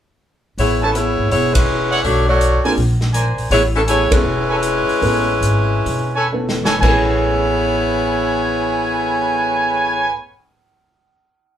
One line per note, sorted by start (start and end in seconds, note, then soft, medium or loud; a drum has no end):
0.58 1.15 A1 medium
0.58 0.81 B3 medium
0.58 0.81 E4 medium
0.58 0.81 G#4 medium
0.58 0.81 C#5 medium
0.58 kick soft
0.58 open hi-hat soft
0.82 0.96 E3 medium
0.82 0.94 B3 medium
0.82 0.96 C#4 medium
0.82 0.96 A4 medium
0.82 0.90 B4 medium
0.82 0.91 C#5 medium
0.82 0.90 G#5 medium
0.82 0.91 A5 medium
0.95 1.31 B3 medium
0.95 1.31 E4 medium
0.95 1.31 G#4 medium
0.95 1.30 C#5 medium
0.95 closed hi-hat soft
1.17 1.30 G#1 medium
1.31 2.00 E1 medium
1.31 1.54 B3 medium
1.31 1.53 E4 medium
1.31 1.54 G#4 medium
1.31 1.54 C#5 medium
1.31 kick soft
1.31 open hi-hat soft
1.54 2.04 G#3 medium
1.54 2.04 C#4 medium
1.54 2.04 E4 medium
1.54 2.04 B4 medium
1.54 kick medium
1.54 ride medium
1.91 2.00 C#5 medium
1.91 2.00 D5 medium
1.91 2.00 E5 medium
1.91 2.00 F#5 medium
1.91 open hi-hat soft
2.04 2.61 B1 medium
2.04 2.27 A3 medium
2.04 2.26 D4 medium
2.04 2.27 F#4 medium
2.04 2.27 C#5 medium
2.04 kick soft
2.04 open hi-hat soft
2.28 2.63 A3 medium
2.28 2.62 F#4 medium
2.28 2.62 C#5 medium
2.28 2.63 D5 medium
2.41 closed hi-hat medium
2.64 2.76 A#3 soft
2.64 2.76 C4 soft
2.64 2.76 D4 soft
2.64 2.76 F4 soft
2.64 2.76 G#4 medium
2.64 2.73 A#4 medium
2.64 2.73 C5 medium
2.64 2.73 D5 medium
2.64 2.73 G#5 medium
2.64 open hi-hat soft
2.77 3.33 A#1 medium
2.77 kick soft
2.77 open hi-hat soft
3.01 snare soft
3.13 3.50 A#4 medium
3.13 3.50 C5 medium
3.13 3.50 D5 medium
3.13 3.50 G#5 medium
3.13 closed hi-hat soft
3.36 3.49 A#1 medium
3.36 open hi-hat soft
3.50 4.07 A1 medium
3.50 3.62 B3 medium
3.50 3.62 E4 medium
3.50 3.62 G#4 medium
3.50 3.62 C#5 loud
3.50 kick soft
3.50 open hi-hat soft
3.76 3.81 E3 medium
3.76 3.81 B3 medium
3.76 3.81 C#4 medium
3.76 3.81 A4 medium
3.87 4.11 B3 medium
3.87 4.11 E4 medium
3.87 4.11 G#4 medium
3.87 4.03 A4 medium
3.87 4.03 B4 medium
3.87 4.03 C#5 medium
3.87 4.11 C#5 medium
3.87 4.03 G#5 medium
3.87 closed hi-hat medium
4.10 6.29 G#3 medium
4.10 4.22 A3 medium
4.10 4.22 B3 medium
4.10 4.22 C#4 medium
4.10 6.29 C#4 medium
4.10 4.23 E4 medium
4.10 6.29 E4 medium
4.10 4.23 G#4 medium
4.10 6.29 B4 loud
4.10 muted upright bass stroke soft
4.10 kick medium
4.10 ride medium
4.24 4.84 E1 medium
4.49 4.58 A4 medium
4.49 4.58 B4 medium
4.49 4.58 C#5 medium
4.49 4.58 G#5 medium
4.63 closed hi-hat medium
4.89 open hi-hat soft
5.02 5.40 A1 medium
5.02 5.26 A3 medium
5.02 5.26 B3 medium
5.02 5.26 C#4 medium
5.02 5.26 E4 medium
5.02 5.26 G#4 medium
5.02 kick soft
5.02 open hi-hat soft
5.41 5.82 G#1 medium
5.41 closed hi-hat soft
5.86 6.78 E1 medium
5.86 kick soft
5.86 open hi-hat soft
6.16 6.27 A4 medium
6.16 6.27 B4 medium
6.16 6.27 C#5 medium
6.16 6.27 G#5 medium
6.33 6.61 A3 medium
6.33 6.61 B3 soft
6.33 6.61 C#4 soft
6.33 6.62 E4 soft
6.33 6.62 A4 medium
6.49 snare soft
6.64 6.76 A4 medium
6.64 6.76 B4 medium
6.64 6.76 C#5 medium
6.64 6.76 G#5 medium
6.64 snare medium
6.76 10.08 A2 medium
6.76 10.11 A3 medium
6.81 10.09 A1 medium
6.81 10.14 B3 medium
6.81 10.11 B3 medium
6.81 10.11 E4 medium
6.81 10.10 G#4 medium
6.81 10.13 B4 medium
6.81 10.13 C#5 medium
6.81 10.10 C#5 medium
6.81 10.13 G#5 medium
6.81 kick medium
6.81 crash medium
6.85 10.17 C#4 medium
6.85 10.20 G#4 medium